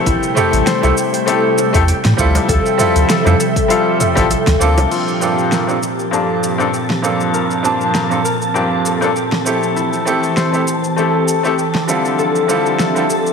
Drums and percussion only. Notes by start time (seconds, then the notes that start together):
0.06 kick, open hi-hat, shaker
0.23 shaker
0.37 mid tom, shaker
0.53 open hi-hat, shaker
0.67 snare, open hi-hat, shaker
0.83 high bongo, shaker
0.97 shaker
1.14 open hi-hat, shaker
1.28 open hi-hat, shaker
1.58 high bongo, shaker
1.74 kick, open hi-hat, shaker
1.88 open hi-hat, shaker
2.05 snare, open hi-hat
2.18 kick, shaker
2.35 open hi-hat, high bongo, shaker
2.49 kick, open hi-hat, shaker
2.66 shaker
2.79 mid tom, open hi-hat, shaker
2.96 open hi-hat, shaker
3.10 snare, open hi-hat, shaker
3.27 high bongo, shaker
3.40 open hi-hat, shaker
3.56 kick, open hi-hat, shaker
3.70 open hi-hat, shaker
4.00 mid tom, open hi-hat, high bongo, shaker
4.17 kick, open hi-hat, shaker
4.31 open hi-hat, shaker
4.47 kick, snare, open hi-hat
4.61 shaker
4.78 open hi-hat, high bongo, shaker
4.91 crash, shaker
5.08 shaker
5.22 shaker
5.39 shaker
5.52 snare, shaker
5.69 shaker
5.83 shaker
5.99 shaker
6.13 shaker
6.43 shaker
6.60 shaker
6.74 shaker
6.90 snare
7.04 shaker
7.20 shaker
7.34 shaker
7.51 shaker
7.65 shaker
7.81 shaker
7.95 snare, shaker
8.11 shaker
8.25 shaker
8.42 shaker
8.56 shaker
8.86 shaker
9.02 shaker
9.16 shaker
9.32 snare
9.46 shaker
9.63 shaker
9.77 shaker
9.93 shaker
10.07 shaker
10.24 shaker
10.37 snare, shaker
10.54 shaker
10.68 shaker
10.84 shaker
10.98 shaker
11.28 shaker
11.45 shaker
11.58 shaker
11.75 snare
11.89 shaker
12.05 shaker
12.19 shaker
12.36 shaker
12.49 shaker
12.66 shaker
12.79 snare, shaker
12.96 shaker
13.10 shaker
13.27 shaker